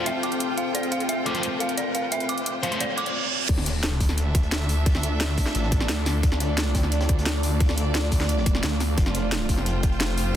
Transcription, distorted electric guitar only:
1.26 1.33 A3 medium
1.26 1.33 F4 medium
1.26 1.33 C5 loud
1.34 1.44 A3 medium
1.34 1.44 F4 medium
1.34 1.44 C5 medium
2.63 2.71 A3 medium
2.63 2.71 F4 medium
2.63 2.71 C5 loud
2.72 2.81 A3 medium
2.72 2.81 F4 medium
2.72 2.81 C5 medium

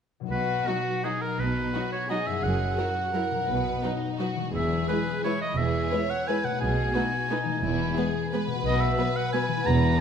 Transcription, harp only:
0.20 2.45 B2 soft
0.20 2.29 F#3 soft
0.24 2.40 D#4 soft
0.24 2.43 B4 soft
2.25 3.41 F#2 soft
2.30 3.34 F#3 soft
2.34 3.45 E4 soft
2.39 3.48 A#4 soft
3.30 4.47 B2 soft
3.35 4.49 F#3 soft
3.39 4.51 D#4 soft
3.44 4.48 B4 soft
4.36 6.53 E3 soft
4.40 6.55 G#3 soft
4.45 6.57 E4 soft
4.49 6.55 B4 soft
6.43 7.56 B2 soft
6.47 7.58 A3 soft
6.52 7.60 D#4 soft
6.56 7.57 B4 soft
7.45 8.57 E3 soft
7.49 8.59 G#3 soft
7.54 8.62 E4 soft
7.58 8.59 B4 soft
8.47 9.58 B2 soft
8.51 9.51 B3 soft
8.56 9.63 F#4 soft
8.60 9.60 B4 soft
9.48 10.01 E3 soft
9.53 10.01 B3 soft
9.57 10.01 E4 soft
9.61 10.01 B4 soft

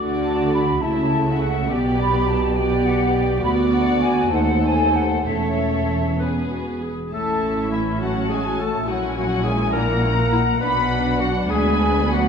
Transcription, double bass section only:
0.00 0.79 D2 soft
0.83 1.71 C#2 soft
1.70 3.43 B1 medium
3.42 4.32 D2 medium
4.31 5.23 D#2 medium
5.25 6.92 E1 soft
7.12 8.84 A1 soft
8.88 10.61 A#1 soft
10.61 11.48 B1 medium
11.50 12.29 D2 medium

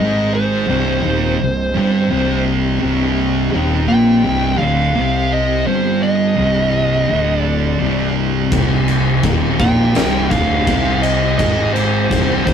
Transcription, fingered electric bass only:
0.00 0.64 G#1 medium
0.69 1.02 C1 loud
1.05 1.37 D#1 medium
1.41 1.73 C1 medium
1.77 2.09 G1 medium
2.10 2.77 C1 medium
2.82 3.49 C1 medium
3.53 3.86 D#1 loud
3.90 4.22 A#1 medium
4.25 4.58 C1 loud
4.59 4.93 D1 medium
4.95 5.62 C2 medium
5.67 6.34 G1 medium
6.37 7.05 C1 loud
7.09 7.77 D1 loud
7.80 8.48 C1 medium
8.52 9.20 C1 medium
9.24 9.57 D#1 loud
9.60 9.93 A#1 medium
9.95 10.28 C1 loud
10.31 10.65 D1 loud
10.67 11.35 C2 loud
11.39 12.06 G#1 medium
12.11 12.44 C1 loud
12.47 12.54 D#1 medium

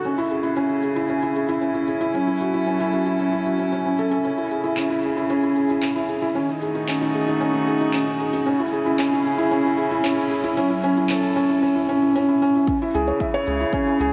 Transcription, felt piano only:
0.05 0.17 C#4 medium
0.18 0.30 E4 medium
0.31 0.43 G#4 medium
0.43 0.56 E4 medium
0.56 0.69 C#4 medium
0.70 0.82 E4 medium
0.83 0.91 G#4 medium
0.96 1.04 E4 medium
1.10 1.22 C#4 medium
1.23 1.30 E4 loud
1.36 1.43 G#4 medium
1.49 1.61 E4 medium
1.61 1.74 C#4 medium
1.74 1.87 E4 medium
1.88 2.01 G#4 medium
2.01 2.14 E4 medium
2.14 2.27 C#4 medium
2.27 2.40 E4 medium
2.41 2.48 F#4 medium
2.54 2.61 E4 medium
2.67 2.80 C#4 medium
2.80 2.88 E4 loud
2.93 3.01 F#4 medium
3.06 3.19 E4 medium
3.20 3.32 C#4 medium
3.32 3.45 E4 medium
3.46 3.58 F#4 medium
3.59 3.71 C#4 medium
3.72 3.84 C#4 medium
3.86 3.98 C#4 medium
3.99 4.10 A4 medium
4.11 4.24 A4 medium
4.25 4.37 C#4 medium
4.38 4.50 E4 medium
4.51 4.59 G#4 medium
4.64 4.72 E4 medium
4.77 4.90 C#4 medium
4.90 4.98 E4 medium
5.04 5.12 G#4 medium
5.17 5.28 E4 medium
5.30 5.43 C#4 loud
5.43 5.56 E4 medium
5.56 5.64 G#4 medium
5.70 5.77 E4 medium
5.82 5.95 C#4 medium
5.96 6.03 E4 medium
6.09 6.16 G#4 medium
6.22 6.33 E4 medium
6.35 6.48 C#4 medium
6.49 6.61 D#4 medium
6.62 6.69 G#4 medium
6.75 6.83 D#4 medium
6.88 7.01 C#4 medium
7.01 7.09 D#4 medium
7.14 7.22 G#4 medium
7.28 7.39 D#4 medium
7.40 7.53 C#4 loud
7.53 7.66 D#4 medium
7.67 7.75 G#4 medium
7.81 7.88 D#4 medium
7.94 8.06 C#4 medium
8.07 8.14 D#4 medium
8.20 8.27 G#4 medium
8.33 8.44 D#4 loud
8.46 8.59 C#4 loud
8.60 8.72 E4 medium
8.73 8.80 G#4 medium
8.86 8.93 E4 loud
8.99 9.11 C#4 medium
9.13 9.25 E4 medium
9.25 9.33 G#4 medium
9.38 9.46 E4 loud
9.51 9.64 C#4 loud
9.65 9.77 E4 medium
9.77 9.85 G#4 medium
9.91 9.98 E4 loud
10.04 10.16 C#4 loud
10.17 10.29 E4 medium
10.30 10.38 G#4 medium
10.44 10.51 E4 loud
10.57 10.69 C#4 loud
10.70 10.81 E4 medium
10.84 10.96 C#4 loud
10.97 11.08 E4 medium
11.10 11.22 C#4 loud
11.23 11.34 E4 medium
11.36 11.48 C#4 loud
11.49 11.60 E4 medium
11.62 11.75 C#4 loud
11.75 11.86 E4 medium
11.89 12.01 C#4 loud
12.02 12.13 E4 medium
12.16 12.28 C#4 loud
12.29 12.39 E4 medium
12.42 12.54 C#4 loud
12.55 12.66 E4 medium
12.69 12.75 C#4 medium
12.82 12.94 E4 loud
12.95 13.07 G#4 loud
13.08 13.15 C#5 medium
13.21 13.33 E5 medium
13.34 13.46 C#5 loud
13.47 13.59 G#4 medium
13.60 13.72 E4 medium
13.73 13.85 C#4 medium
13.87 13.99 E4 medium
14.00 14.07 G#4 loud

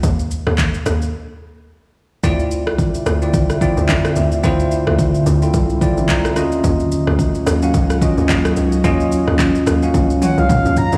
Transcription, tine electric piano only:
2.23 3.01 C4 loud
2.23 3.02 E4 loud
2.23 3.02 F4 loud
2.23 3.02 D5 loud
3.22 3.54 C4 medium
3.22 3.54 E4 medium
3.22 3.55 F4 medium
3.22 3.55 D5 medium
3.61 4.29 C4 medium
3.61 4.29 E4 medium
3.61 4.29 F4 medium
3.61 4.30 D5 medium
4.44 5.22 C4 loud
4.44 5.22 E4 loud
4.44 5.22 F4 loud
4.44 5.22 C5 loud
5.42 5.74 C4 medium
5.42 5.75 E4 medium
5.42 5.75 F4 medium
5.42 5.75 A4 medium
5.81 6.36 C4 medium
5.81 6.37 E4 medium
5.81 6.36 F4 medium
5.81 6.37 D5 medium
6.09 6.60 A#5 medium
6.36 7.25 C#4 medium
6.36 7.26 F4 medium
6.36 7.26 F#4 medium
6.36 7.26 D#5 loud
7.62 7.95 C#4 medium
7.62 7.95 F#4 medium
7.62 7.95 F5 medium
7.62 7.95 F#5 medium
8.02 8.69 C#4 medium
8.02 8.70 F4 medium
8.02 8.70 F#4 medium
8.02 8.70 D#5 loud
8.84 9.62 C#4 loud
8.84 9.62 F4 loud
8.84 9.62 F#4 loud
8.84 9.63 D#5 loud
9.83 10.15 C#4 medium
9.83 10.15 F#4 medium
9.83 10.15 F5 medium
9.83 10.15 F#5 medium
10.22 10.90 C#4 medium
10.22 10.90 F4 medium
10.22 10.90 F#4 medium
10.22 10.90 C#5 medium

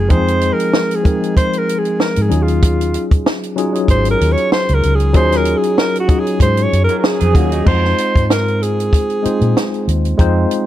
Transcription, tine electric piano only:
0.00 0.08 F3 medium
0.00 0.09 G#3 medium
0.00 0.10 C4 medium
0.00 0.10 D#4 medium
0.00 2.31 F4 medium
0.00 0.11 G#4 medium
0.08 0.90 F3 medium
0.08 0.90 G#3 medium
0.08 0.91 C4 medium
0.08 0.91 D#4 medium
0.08 0.91 G#4 loud
1.03 2.11 F3 medium
1.03 2.11 G#3 medium
1.03 2.12 C4 medium
1.03 2.12 D#4 medium
1.03 2.12 A#4 medium
2.29 3.37 F#3 medium
2.29 3.37 C#4 medium
2.29 3.37 D#4 medium
2.29 3.38 F4 medium
2.29 3.38 G#4 medium
3.56 3.71 F#3 medium
3.56 3.71 C#4 medium
3.56 3.71 D#4 medium
3.56 3.72 F4 medium
3.56 3.72 G#4 medium
3.73 4.78 F#3 medium
3.73 4.79 C#4 medium
3.73 4.79 D#4 medium
3.73 4.79 F4 medium
3.73 4.80 G#4 medium
5.13 5.94 F#3 medium
5.13 5.95 C#4 medium
5.13 5.95 D#4 medium
5.13 5.95 F4 medium
5.13 5.96 G#4 loud
6.07 7.15 F#3 medium
6.07 7.15 C#4 medium
6.07 7.16 D#4 medium
6.07 7.16 F4 medium
6.07 7.16 G#4 medium
7.33 7.61 F#3 medium
7.33 7.61 C#4 medium
7.33 7.62 D#4 medium
7.33 7.62 F4 medium
7.33 7.62 G#4 medium
7.65 8.72 G#3 medium
7.65 8.73 C4 medium
7.65 8.73 D#4 medium
7.65 8.73 F4 medium
7.65 8.74 C5 medium
9.23 10.04 G#3 medium
9.23 10.04 C4 medium
9.23 10.05 D#4 medium
9.23 10.05 F4 medium
9.23 10.05 C5 medium
10.18 10.66 G#3 loud
10.18 10.66 C4 loud
10.18 10.66 D#4 loud
10.18 10.66 F4 loud
10.18 10.66 C5 loud

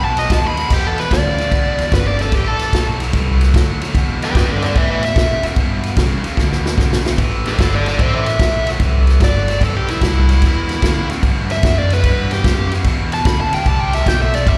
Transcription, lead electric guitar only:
0.04 0.17 A5 medium
0.19 0.31 D#5 loud
0.32 0.46 A5 medium
0.46 0.71 B5 loud
0.73 0.87 G4 medium
0.87 0.99 A4 medium
0.99 1.12 B4 medium
1.14 1.91 D5 medium
1.94 2.06 B4 medium
2.08 2.20 D5 medium
2.21 2.35 A4 medium
2.35 2.48 G4 medium
2.48 2.86 A4 medium
4.24 4.35 G4 medium
4.24 4.36 B4 medium
4.36 4.48 G4 medium
4.36 4.51 B4 medium
4.51 4.62 A4 medium
4.51 4.63 D5 medium
4.63 4.75 A4 medium
4.63 4.76 D5 medium
4.77 4.89 B4 medium
4.77 4.90 E5 medium
4.90 5.02 B4 medium
4.90 5.03 E5 medium
5.05 5.43 E5 loud
7.47 7.60 E4 medium
7.47 7.60 A4 medium
7.61 7.72 E4 medium
7.61 7.73 A4 medium
7.75 7.86 A4 medium
7.75 7.87 D5 medium
7.88 8.00 A4 medium
7.88 8.02 D5 medium
8.00 8.13 C5 medium
8.00 8.14 E5 medium
8.14 8.26 C5 medium
8.14 8.27 E5 medium
8.30 8.67 E5 loud
9.24 9.62 D5 loud
9.64 9.76 A4 medium
9.77 9.89 G4 loud
9.90 11.07 E4 loud
11.52 11.77 E5 medium
11.79 11.91 D5 medium
11.93 12.31 B4 medium
12.33 12.71 G4 medium
13.14 13.26 A5 loud
13.27 13.39 B5 medium
13.41 13.53 A5 medium
13.54 13.67 G5 medium
13.67 13.80 A5 medium
13.80 13.94 G5 medium
13.94 14.08 E5 medium
14.08 14.20 G5 medium
14.22 14.35 E5 loud
14.35 14.48 D5 medium
14.48 14.58 E5 loud

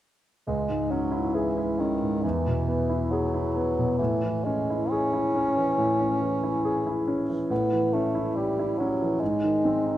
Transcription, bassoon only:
0.47 0.92 G#3 soft
0.91 1.36 F#3 soft
1.34 1.80 E3 soft
1.79 2.24 D#3 soft
2.22 3.12 E3 soft
3.11 3.98 F#3 soft
3.98 4.46 E3 soft
4.44 4.91 G#3 soft
4.90 7.07 C#4 medium
7.51 7.94 B3 medium
7.93 8.37 A3 soft
8.35 8.80 G3 soft
8.78 9.22 F#3 soft
9.20 9.98 G#3 soft

